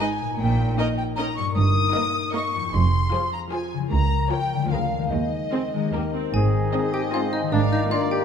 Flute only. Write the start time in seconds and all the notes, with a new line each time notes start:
0.01 G#5
0.39 G5
0.79 D#5
0.97 G5
1.16 A#5
1.36 C#6
1.55 D#6
2.35 C#6
2.73 C6
3.33 A#5
3.52 G#5
3.91 A#5
4.31 G5
4.71 F5
5.11 D#5
6.34 G#5
7.53 A#5